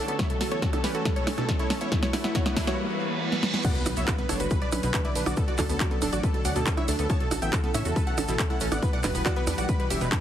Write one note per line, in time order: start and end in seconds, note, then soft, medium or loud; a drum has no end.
0.00 0.16 D3 medium
0.00 0.17 A3 medium
0.00 0.17 C#4 medium
0.00 0.15 F#4 medium
0.00 1.88 C#5 medium
0.00 riser medium
0.08 0.13 B3 medium
0.08 0.16 A4 medium
0.08 closed hi-hat soft
0.19 1.90 E3 medium
0.19 1.90 A3 medium
0.19 0.24 B3 medium
0.19 1.90 C#4 medium
0.19 1.90 A4 medium
0.19 0.27 C#5 medium
0.19 0.27 E5 loud
0.19 kick loud
0.19 snare medium
0.19 closed hi-hat medium
0.30 0.34 B2 medium
0.30 0.37 A4 medium
0.30 closed hi-hat soft
0.41 0.45 F#4 medium
0.41 0.48 A4 medium
0.41 snare medium
0.41 open hi-hat loud
0.51 0.56 B3 medium
0.51 0.59 A4 medium
0.51 0.59 C#5 loud
0.51 0.59 C#5 medium
0.51 closed hi-hat soft
0.62 0.67 F#4 loud
0.62 0.70 A4 medium
0.62 kick loud
0.62 snare medium
0.62 closed hi-hat medium
0.73 0.76 B3 loud
0.73 0.81 A4 medium
0.73 closed hi-hat soft
0.73 percussion blips medium
0.84 0.90 C#4 loud
0.84 0.91 G4 medium
0.84 0.91 B4 medium
0.84 0.91 B4 loud
0.84 snare medium
0.84 open hi-hat loud
0.95 1.01 F#4 medium
0.95 1.02 A4 medium
0.95 closed hi-hat soft
1.05 1.13 A4 medium
1.05 1.10 B4 medium
1.05 kick loud
1.05 snare medium
1.05 closed hi-hat medium
1.16 1.21 B2 medium
1.16 1.24 A4 medium
1.16 1.24 C#5 medium
1.16 closed hi-hat soft
1.27 1.31 C#4 medium
1.27 1.34 A4 medium
1.27 1.35 A4 medium
1.27 snare medium
1.27 open hi-hat loud
1.27 percussion blips medium
1.38 1.42 B2 loud
1.38 1.45 A4 medium
1.38 closed hi-hat soft
1.38 percussion blips medium
1.49 1.53 C#4 medium
1.49 1.56 A4 medium
1.49 kick loud
1.49 snare medium
1.49 closed hi-hat medium
1.59 1.64 E4 loud
1.59 1.67 A4 medium
1.59 1.67 C#5 medium
1.59 closed hi-hat soft
1.70 1.77 C#4 loud
1.70 1.78 A4 medium
1.70 snare medium
1.70 open hi-hat loud
1.81 1.85 B3 medium
1.81 1.89 E4 medium
1.81 1.88 C#5 medium
1.81 1.89 C#5 medium
1.81 closed hi-hat soft
1.92 3.63 E3 medium
1.92 3.63 G3 medium
1.92 3.63 B3 medium
1.92 1.96 B3 medium
1.92 1.99 E4 medium
1.92 3.63 F#4 medium
1.92 3.63 B4 medium
1.92 kick loud
1.92 snare medium
1.92 closed hi-hat medium
2.03 2.07 B2 medium
2.03 2.10 E4 medium
2.03 2.10 C#5 loud
2.03 snare medium
2.03 closed hi-hat soft
2.13 2.21 E4 medium
2.13 2.18 F#4 medium
2.13 snare medium
2.13 open hi-hat loud
2.13 percussion blips medium
2.24 2.29 B3 medium
2.24 2.32 E4 medium
2.24 snare medium
2.24 closed hi-hat soft
2.35 2.42 E4 medium
2.35 2.39 F#4 loud
2.35 2.42 C#5 loud
2.35 kick loud
2.35 snare medium
2.35 closed hi-hat medium
2.46 2.48 B3 loud
2.46 2.53 E4 medium
2.46 snare medium
2.46 closed hi-hat soft
2.46 percussion blips medium
2.56 2.63 D4 loud
2.56 2.64 E4 medium
2.56 kick medium
2.56 snare loud
2.56 open hi-hat loud
2.67 2.75 E4 medium
2.67 2.74 F#4 medium
2.67 2.75 C#5 loud
2.67 snare medium
2.67 closed hi-hat soft
2.78 reverse cymbal medium
3.32 snare medium
3.43 snare medium
3.54 snare medium
3.64 7.06 D3 medium
3.64 7.06 F#3 medium
3.64 3.69 B3 medium
3.64 5.35 B3 medium
3.64 7.06 F#4 medium
3.64 5.35 B4 medium
3.64 3.72 D5 medium
3.64 3.72 F#5 loud
3.64 kick loud
3.64 closed hi-hat medium
3.64 crash loud
3.64 impact medium
3.64 shaker soft
3.75 3.80 B2 medium
3.75 3.83 B4 medium
3.75 closed hi-hat soft
3.86 3.94 B1 loud
3.86 3.90 F#4 medium
3.86 3.94 B4 medium
3.86 open hi-hat loud
3.86 percussion blips medium
3.86 shaker medium
3.97 4.05 B1 medium
3.97 4.01 B3 medium
3.97 4.04 C#5 medium
3.97 4.04 E5 medium
3.97 closed hi-hat medium
3.97 shaker medium
4.08 4.12 F#4 loud
4.08 4.15 B4 medium
4.08 kick loud
4.08 clap loud
4.08 closed hi-hat medium
4.08 shaker soft
4.18 4.21 B3 loud
4.18 4.26 B4 medium
4.18 closed hi-hat soft
4.29 4.37 F#1 medium
4.29 4.36 D4 loud
4.29 4.37 A4 medium
4.29 4.37 C#5 medium
4.29 open hi-hat loud
4.29 percussion blips medium
4.29 shaker medium
4.40 4.48 F#1 medium
4.40 4.47 F#4 medium
4.40 4.47 B4 medium
4.40 closed hi-hat medium
4.40 shaker medium
4.50 4.55 B4 medium
4.50 4.58 B4 medium
4.50 kick loud
4.50 closed hi-hat medium
4.50 shaker soft
4.62 4.66 B2 medium
4.62 4.69 B4 medium
4.62 4.69 D5 medium
4.62 4.69 D5 loud
4.62 closed hi-hat soft
4.72 4.81 B1 loud
4.72 4.77 C#4 medium
4.72 4.80 B4 medium
4.72 open hi-hat loud
4.72 percussion blips medium
4.72 shaker medium
4.83 4.91 B1 medium
4.83 4.87 B2 loud
4.83 4.91 B4 medium
4.83 closed hi-hat medium
4.83 shaker medium
4.94 4.98 D4 medium
4.94 5.01 B4 medium
4.94 5.02 B4 medium
4.94 kick loud
4.94 clap loud
4.94 closed hi-hat medium
4.94 shaker soft
5.05 5.09 E4 loud
5.05 5.12 B4 medium
5.05 5.12 D5 medium
5.05 closed hi-hat soft
5.15 5.24 B1 medium
5.15 5.22 D4 loud
5.15 5.23 B4 medium
5.15 open hi-hat loud
5.15 shaker loud
5.26 5.34 B1 medium
5.26 5.31 B3 medium
5.26 5.34 F#4 medium
5.26 5.34 D5 medium
5.26 closed hi-hat medium
5.26 percussion blips medium
5.26 shaker medium
5.37 8.79 A3 medium
5.37 5.41 B3 medium
5.37 7.08 C#4 medium
5.37 5.45 A4 medium
5.37 kick loud
5.37 closed hi-hat medium
5.37 shaker soft
5.48 5.52 B2 medium
5.48 5.55 F#4 medium
5.48 5.55 D5 medium
5.48 closed hi-hat soft
5.58 5.67 D2 loud
5.58 5.63 F#4 medium
5.58 5.66 A4 medium
5.58 kick medium
5.58 clap medium
5.58 open hi-hat loud
5.58 percussion blips medium
5.58 shaker medium
5.69 5.78 D2 medium
5.69 5.74 B3 medium
5.69 5.77 A4 medium
5.69 open hi-hat medium
5.69 shaker medium
5.80 5.85 F#4 loud
5.80 5.88 F#4 medium
5.80 5.88 D5 loud
5.80 5.88 D5 medium
5.80 kick loud
5.80 clap loud
5.80 closed hi-hat medium
5.80 shaker soft
5.91 5.94 B3 loud
5.91 5.98 A4 medium
5.91 5.99 A4 medium
5.91 closed hi-hat soft
6.02 6.10 D1 medium
6.02 6.08 D4 loud
6.02 6.09 A4 medium
6.02 open hi-hat loud
6.02 percussion blips medium
6.02 shaker loud
6.13 6.21 A1 medium
6.13 6.19 F#4 medium
6.13 6.20 F#4 medium
6.13 6.20 D5 loud
6.13 closed hi-hat medium
6.13 shaker medium
6.23 6.31 A4 medium
6.23 6.28 B4 medium
6.23 kick loud
6.23 closed hi-hat medium
6.23 shaker soft
6.34 6.39 B2 medium
6.34 6.42 A4 medium
6.34 closed hi-hat soft
6.45 6.53 D2 medium
6.45 6.49 C#4 medium
6.45 6.53 D5 medium
6.45 6.52 F#5 medium
6.45 6.53 F#5 loud
6.45 open hi-hat loud
6.45 shaker medium
6.56 6.64 D2 medium
6.56 6.60 B2 loud
6.56 6.63 A4 medium
6.56 closed hi-hat medium
6.56 shaker medium
6.67 6.71 D4 medium
6.67 6.74 A4 medium
6.67 kick loud
6.67 clap loud
6.67 closed hi-hat medium
6.67 shaker soft
6.77 6.82 E4 loud
6.77 6.85 C#5 medium
6.77 6.85 E5 loud
6.77 6.85 E5 medium
6.77 closed hi-hat soft
6.77 percussion blips medium
6.88 6.96 D2 loud
6.88 6.95 D4 loud
6.88 6.96 A4 medium
6.88 open hi-hat loud
6.88 shaker loud
6.99 7.07 D2 medium
6.99 7.03 B3 medium
6.99 7.06 A4 medium
6.99 closed hi-hat medium
6.99 shaker medium
7.10 8.81 C#3 medium
7.10 8.81 E3 medium
7.10 7.14 B3 medium
7.10 8.81 E4 medium
7.10 8.81 A4 medium
7.10 7.17 C#5 medium
7.10 7.17 A5 loud
7.10 kick loud
7.10 closed hi-hat medium
7.10 shaker soft
7.20 7.25 B2 medium
7.20 7.28 A4 medium
7.20 closed hi-hat soft
7.31 7.39 A1 loud
7.31 7.36 F#4 medium
7.31 7.39 A4 medium
7.31 open hi-hat loud
7.31 percussion blips medium
7.31 shaker medium
7.42 7.50 A1 medium
7.42 7.47 B3 medium
7.42 7.50 E5 medium
7.42 7.50 G5 medium
7.42 7.50 G5 loud
7.42 closed hi-hat medium
7.42 shaker medium
7.53 7.57 F#4 loud
7.53 7.60 A4 medium
7.53 kick loud
7.53 clap loud
7.53 closed hi-hat soft
7.53 shaker soft
7.64 7.66 B3 loud
7.64 7.71 A4 medium
7.64 closed hi-hat soft
7.74 7.83 A2 medium
7.74 7.81 C#4 loud
7.74 7.82 C#5 medium
7.74 7.82 E5 medium
7.74 open hi-hat loud
7.74 percussion blips medium
7.74 shaker loud
7.85 7.93 E2 medium
7.85 7.92 F#4 medium
7.85 7.93 A4 medium
7.85 closed hi-hat soft
7.85 shaker medium
7.96 8.04 A4 medium
7.96 8.00 B4 medium
7.96 kick loud
7.96 closed hi-hat medium
7.96 shaker soft
8.07 8.11 B2 medium
8.07 8.14 A4 medium
8.07 8.14 F#5 medium
8.07 8.14 F#5 loud
8.07 closed hi-hat soft
8.18 8.26 A1 medium
8.18 8.22 C#4 medium
8.18 8.25 A4 medium
8.18 open hi-hat loud
8.18 percussion blips medium
8.18 shaker medium
8.28 8.37 A1 medium
8.28 8.33 B2 loud
8.28 8.36 A4 medium
8.28 closed hi-hat soft
8.28 shaker medium
8.39 8.44 C#4 medium
8.39 8.47 A4 medium
8.39 kick loud
8.39 clap loud
8.39 closed hi-hat medium
8.39 shaker soft
8.50 8.54 E4 loud
8.50 8.58 A4 medium
8.50 8.58 F#5 medium
8.50 closed hi-hat soft
8.60 8.69 A1 medium
8.60 8.67 C#4 loud
8.60 8.68 A4 medium
8.60 open hi-hat loud
8.60 shaker medium
8.72 8.80 A1 medium
8.72 8.76 B3 medium
8.72 8.79 D5 medium
8.72 8.79 F#5 medium
8.72 closed hi-hat medium
8.72 percussion blips medium
8.72 shaker medium
8.82 10.21 E3 medium
8.82 10.21 G3 medium
8.82 8.87 B3 medium
8.82 10.21 B3 medium
8.82 10.21 F#4 medium
8.82 10.21 G4 medium
8.82 8.90 B4 medium
8.82 kick loud
8.82 closed hi-hat soft
8.82 shaker soft
8.93 8.98 B2 medium
8.93 9.01 D5 medium
8.93 9.01 F#5 medium
8.93 9.01 F#5 loud
8.93 closed hi-hat soft
9.03 9.12 E1 loud
9.03 9.08 F#4 medium
9.03 9.11 B4 medium
9.03 kick medium
9.03 clap medium
9.03 open hi-hat loud
9.03 percussion blips medium
9.03 shaker loud
9.15 9.23 E1 medium
9.15 9.19 B3 medium
9.15 9.22 B4 medium
9.15 open hi-hat medium
9.15 shaker medium
9.25 9.30 F#4 loud
9.25 9.33 D5 medium
9.25 9.33 F#5 loud
9.25 9.33 F#5 medium
9.25 kick loud
9.25 clap loud
9.25 closed hi-hat soft
9.25 shaker soft
9.36 9.39 B3 loud
9.36 9.44 B4 medium
9.36 closed hi-hat soft
9.47 9.55 E2 medium
9.47 9.54 D4 loud
9.47 9.55 B4 medium
9.47 open hi-hat loud
9.47 percussion blips medium
9.47 shaker loud
9.58 9.66 B1 medium
9.58 9.64 F#4 medium
9.58 9.65 D5 medium
9.58 9.65 F#5 loud
9.58 9.66 F#5 loud
9.58 closed hi-hat medium
9.58 shaker medium
9.69 9.73 B4 medium
9.69 9.76 B4 medium
9.69 kick loud
9.69 closed hi-hat medium
9.69 shaker soft
9.79 9.84 B2 medium
9.79 9.87 B4 medium
9.79 closed hi-hat soft
9.90 9.98 E1 medium
9.90 9.95 C#4 medium
9.90 9.98 G4 medium
9.90 9.98 E5 medium
9.90 open hi-hat loud
9.90 shaker loud
10.01 10.09 E1 medium
10.01 10.05 B2 loud
10.01 10.09 B4 medium
10.01 closed hi-hat soft
10.01 shaker medium
10.12 10.16 D4 medium
10.12 10.19 B4 medium
10.12 kick loud
10.12 clap loud
10.12 closed hi-hat soft
10.12 shaker soft